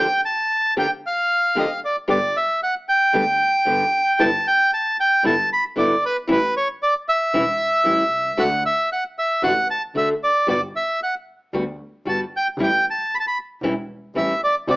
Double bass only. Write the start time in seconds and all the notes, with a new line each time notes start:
2.09 G1
3.14 D2
3.67 G1
4.21 G1
5.24 G1
5.77 G1
6.29 A1
7.34 E1
7.86 A1
8.11 C2
8.37 D2
9.43 A1
9.94 D2
10.48 G1
11.54 D2
12.06 G1
12.57 A1
13.62 E1
14.15 A1
14.67 D2